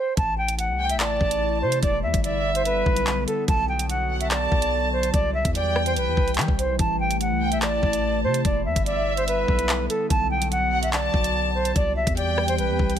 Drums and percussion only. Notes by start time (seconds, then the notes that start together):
0.17 kick, closed hi-hat
0.48 closed hi-hat
0.59 closed hi-hat
0.89 closed hi-hat
1.00 clap, closed hi-hat
1.21 kick
1.31 closed hi-hat
1.72 closed hi-hat
1.83 kick, closed hi-hat
2.14 kick, closed hi-hat
2.24 closed hi-hat
2.55 closed hi-hat
2.65 closed hi-hat
2.86 kick
2.96 closed hi-hat
3.07 clap, closed hi-hat
3.28 closed hi-hat
3.48 kick, closed hi-hat
3.79 closed hi-hat
3.90 closed hi-hat
4.21 closed hi-hat
4.31 clap, closed hi-hat
4.52 kick
4.62 closed hi-hat
5.03 closed hi-hat
5.14 kick, closed hi-hat
5.45 kick, closed hi-hat
5.55 closed hi-hat
5.76 cross-stick
5.86 closed hi-hat
5.96 closed hi-hat
6.17 kick
6.28 closed hi-hat
6.34 clap, closed hi-hat
6.41 closed hi-hat
6.48 kick
6.59 closed hi-hat
6.79 kick, closed hi-hat
7.11 closed hi-hat
7.21 closed hi-hat
7.52 closed hi-hat
7.62 clap, closed hi-hat
7.83 kick
7.93 closed hi-hat
8.34 closed hi-hat
8.45 kick, closed hi-hat
8.76 kick, closed hi-hat
8.86 closed hi-hat
9.17 closed hi-hat
9.28 closed hi-hat
9.48 kick
9.59 closed hi-hat
9.69 clap, closed hi-hat
9.90 closed hi-hat
10.10 kick, closed hi-hat
10.42 closed hi-hat
10.52 closed hi-hat
10.83 closed hi-hat
10.93 clap, closed hi-hat
11.14 kick
11.24 closed hi-hat
11.65 closed hi-hat
11.76 kick, closed hi-hat
12.07 kick, closed hi-hat
12.17 closed hi-hat
12.38 cross-stick
12.48 closed hi-hat
12.58 closed hi-hat
12.79 kick
12.90 closed hi-hat